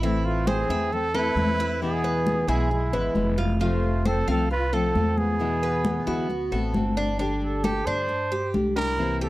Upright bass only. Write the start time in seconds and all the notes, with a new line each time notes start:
Already playing: A1
0.69 E2
1.36 E2
2.48 B1
2.93 G#1
3.15 F1
4.27 C2
4.95 E2
6.07 D2
6.51 A1
6.74 G1
7.86 G2
8.54 C2